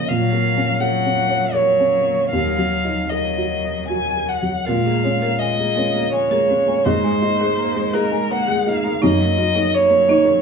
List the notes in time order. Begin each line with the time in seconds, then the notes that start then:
Already playing: F3 A#3 C#4 A#4 C#5 D#5
0.09 A#2 F#3 F5
0.33 A#3
0.57 C#4
0.80 F#3 A#4 F#5
1.05 C#4
1.29 C#5
1.54 F#3 A#4 C#5
1.80 C#4
2.06 A#3
2.32 D#2 F#3 F5
2.58 F#3
2.85 D#4
3.09 F#3 A#4 D#5
3.37 F#4
3.64 D#5
3.88 F#4 G#5
4.16 A#4
4.29 F#5
4.42 F#3
4.65 A#2 G#3 A#4 F5
4.85 G#3 A#3 F5
5.03 G#3 C#4 C#5
5.21 A#3 A#4
5.39 G#3 D#5 G#5
5.57 G#3 A#3
5.75 G#3 C#4 A#4
5.94 A#3 A#4 F5
6.12 G#3 C#5 G#5
6.29 G#3 A#3 A#4
6.50 G#3 C#4 C#5
6.67 A#3 A#4 G#5
6.84 G#2 A#3 G#4 C5
7.03 G#3 G#5
7.22 A#3 D#4 D#5
7.40 G#3 G#4 A#4
7.57 A#3 A#5
7.75 G#3
7.94 A#3 D#4 G#4 A#4
8.11 G#3 A#4 G#5
8.30 A#3 F#5 A#5
8.47 G#3 G#4
8.66 A#3 D#4 D#5 F5
8.84 G#3 A#4 A#5
9.02 F#2 A#3 D#4 D#5
9.20 F#3 A#3 A#4
9.38 A#3 D#4 F#4
9.55 F#3 D#4 A#4
9.72 A#3 C#5 D#5
9.89 F#3 A#3
10.08 A#3 D#4
10.25 F#3 A#4